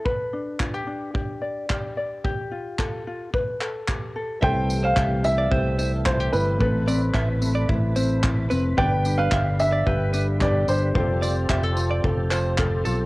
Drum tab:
TB |--------|--------|-x-x-x-x|-x-x-x-x|
CP |--x---x-|--x--xx-|--x---x-|--x---x-|
BD |o-o-o-o-|o-o-o-o-|o-o-o-o-|o-o-o-o-|

TB |-x-x-x-x|-x-x-x-x|
CP |--x---x-|--x--xx-|
BD |o-o-o-o-|o-o-o-o-|